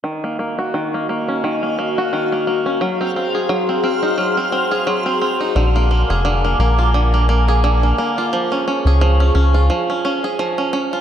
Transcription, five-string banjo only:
X:1
M:4/4
L:1/16
Q:"Swing 16ths" 1/4=87
K:Ebdor
V:1 name="Five-string banjo"
E, B, B, G E, B, B, D E, B, B, G E, B, B, D | G, C C A G, C C E G, C C A G, C C E | =D, B, B, A D, B, B, F D, B, B, A D, B, B, F | F, D D A F, D D F F, D D A F, D D F |]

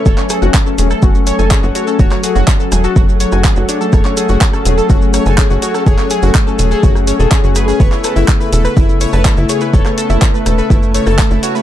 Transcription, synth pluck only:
X:1
M:4/4
L:1/16
Q:1/4=124
K:F#m
V:1 name="Synth pluck"
[cc'] [cc'] [Gg] [Ff] z [Aa] [Gg] [Aa] [Ff] z [cc'] [gg'] [Gg] [Ff] [cc'] [Aa] | [cc'] [cc'] [Gg] [Ff] z [Aa] [Gg] [Aa] [Ff] z [cc'] [gg'] [Gg] [Ff] [cc'] [Aa] | [cc'] [cc'] [Gg] [Ff] z [Aa] [Gg] [Aa] [Ff] z [cc'] [gg'] [Gg] [Ff] [cc'] [Aa] | [cc'] [cc'] [Gg] [Ff] z [Aa] [Gg] [Aa] [Ff] z [cc'] [Gg] [Gg] [Ff] [Gg] [Gg] |
[cc'] [cc'] [Aa] [Ee] z [Bb] [Aa] [Bb] [Ee] z [cc'] [aa'] [Aa] [Ee] [cc'] [Bb] | [cc'] [cc'] [Aa] [Ee] z [Bb] [Aa] [Bb] [Ee] z [cc'] [aa'] [Aa] [Ee] [cc'] [Bb] |]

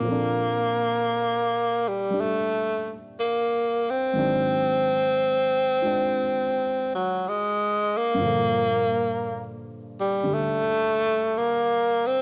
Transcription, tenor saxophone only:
X:1
M:4/4
L:1/16
Q:"Swing" 1/4=59
K:Bb
V:1 name="Tenor saxophone"
B,6 G,2 A,3 z B,2 C2- | C8- C2 _G,2 _A,2 B,2- | B,4- B, z G,2 A,4 B,2 C2 |]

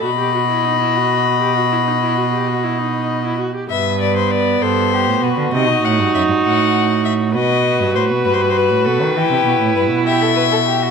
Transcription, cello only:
X:1
M:12/8
L:1/16
Q:3/8=66
K:Em
V:1 name="Cello" clef=bass
B,,16- B,,6 z2 | G,,6 G,,3 A,, B,, D, ^B,, =B,, A,, G,, F,, G,, A,,6 | B,,3 G,, A,, B,, G,,3 A,, B,, ^D, E, C, B,, A,, G,, B,,6- B,, |]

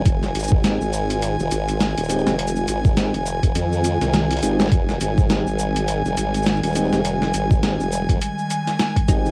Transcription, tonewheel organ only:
X:1
M:4/4
L:1/16
Q:"Swing 16ths" 1/4=103
K:Fm
V:1 name="Tonewheel organ"
z4 [A,CEG] z8 z [A,CEG]2 | z4 [A,CEG] z8 z [A,CEG]2 | z4 [A,CEG] z8 z [A,CEG]2 | z4 [A,CEG] z8 z [A,CEG]2 |]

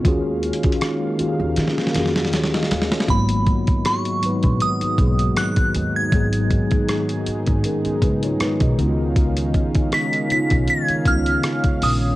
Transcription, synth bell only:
X:1
M:4/4
L:1/16
Q:"Swing 16ths" 1/4=79
K:G#dor
V:1 name="Synth bell"
z16 | b4 c'4 d'4 f'3 g'- | g'6- g' z8 z | z4 b'2 b'2 g'2 e'4 d'2 |]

